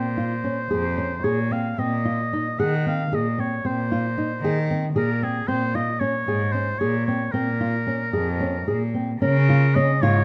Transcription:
Already playing: cello A#2, oboe C5
0.17 nylon-string guitar F4
0.44 nylon-string guitar C#4
0.70 cello F2, nylon-string guitar G#4
0.97 nylon-string guitar C#4
1.24 cello A#2, nylon-string guitar G#4, oboe C#5
1.51 nylon-string guitar C4, oboe F5
1.78 cello A#2, nylon-string guitar C4, oboe D#5
2.05 nylon-string guitar F4
2.33 nylon-string guitar D#4
2.59 cello D#3, nylon-string guitar G#4, oboe F#5
2.86 nylon-string guitar C4, oboe F5
3.12 cello A#2, nylon-string guitar G#4, oboe D#5
3.38 nylon-string guitar C4, oboe C#5
3.64 cello A#2, nylon-string guitar C4, oboe C5
3.92 nylon-string guitar F4
4.18 nylon-string guitar D#4
4.42 cello D#3, nylon-string guitar G#4
4.70 nylon-string guitar C4
4.94 cello A#2, nylon-string guitar G#4, oboe A#4
5.22 nylon-string guitar C4, oboe G#4
5.46 cello A#2, nylon-string guitar C4, oboe C5
5.75 nylon-string guitar F4, oboe D#5
6.00 nylon-string guitar C#4, oboe C#5
6.26 cello G#2, nylon-string guitar G#4
6.52 nylon-string guitar C#4, oboe C5
6.79 cello A#2, nylon-string guitar G#4, oboe C#5
7.06 nylon-string guitar C4, oboe C#5
7.32 cello A#2, nylon-string guitar C4, oboe A#4
7.61 nylon-string guitar F4
7.87 nylon-string guitar C#4
8.13 cello F2, nylon-string guitar G#4
8.40 nylon-string guitar C#4
8.67 cello A#2, nylon-string guitar G#4
8.94 nylon-string guitar C4
9.22 cello C#3, nylon-string guitar C#4, oboe A#4
9.49 nylon-string guitar F4
9.75 nylon-string guitar C#4, oboe D#5
10.02 cello G#2, nylon-string guitar F4, oboe C#5

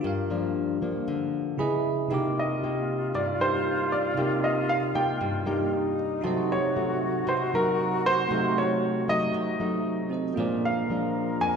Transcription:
Already playing: grand piano D5, tine electric piano D6
0.01 nylon-string guitar G2, tine electric piano F4 G4 A#4
0.07 tine electric piano F5
0.30 nylon-string guitar F3 A#3 D4
0.82 nylon-string guitar F3 A#3 D4
1.08 nylon-string guitar D3
1.58 tine electric piano C#3 E4 G#4 B4 D#5 B5, nylon-string guitar B3 E4 G#4
2.08 tine electric piano C3 D#4 G4, nylon-string guitar C3 A#3 D#4 G4, flute F4
2.12 tine electric piano A#4 D6
2.39 grand piano D#5
2.63 nylon-string guitar A#3 D#4 G4
3.14 nylon-string guitar G2, grand piano D5
3.40 nylon-string guitar A#3 D#4 G4, grand piano C5
3.92 grand piano D5
4.15 tine electric piano C3 D#4 G4, nylon-string guitar C3 A#3 D#4 G4
4.19 tine electric piano A#4 D5
4.44 grand piano D#5
4.69 grand piano F5
4.94 nylon-string guitar A#3 D#4 G4, grand piano G5
5.21 nylon-string guitar G2
5.46 nylon-string guitar A#3 D#4 G4
5.73 flute D#4
6.21 nylon-string guitar C3 F#3 A3 D#4, tine electric piano D#4 F#4 A5, flute F#4
6.25 tine electric piano D#5 C6
6.52 grand piano C#5
6.76 nylon-string guitar F#3 A3 D#4
7.27 nylon-string guitar C3, grand piano C5
7.54 nylon-string guitar F#3 D#4, grand piano A#4
8.06 grand piano C5
8.28 nylon-string guitar C3 F#3 A3 D#4, tine electric piano A3 F#4 A4
8.32 tine electric piano F5 C6
8.58 grand piano C#5
9.08 nylon-string guitar F#3 A3 D#4, grand piano D#5
9.34 nylon-string guitar C3
9.60 nylon-string guitar F#3 A3 D#4
10.10 tine electric piano C4 F#4 A4 C5 D#5
10.34 nylon-string guitar A#2 F3, tine electric piano A#3 F4 G#4, flute A#4
10.38 nylon-string guitar G#3 D4, tine electric piano C5 D5
10.65 grand piano F5
10.90 nylon-string guitar F3 G#3 D4
11.41 nylon-string guitar F2, grand piano G#5

